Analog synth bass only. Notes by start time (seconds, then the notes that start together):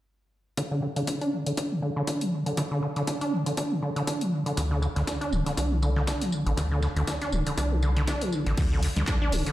4.57 D2
4.96 D2
5.32 D1
5.57 C2
6.46 A1
6.58 D2
6.96 D2
7.32 D1
7.58 C2
8.46 A1
8.58 D2
8.97 D2
9.33 D1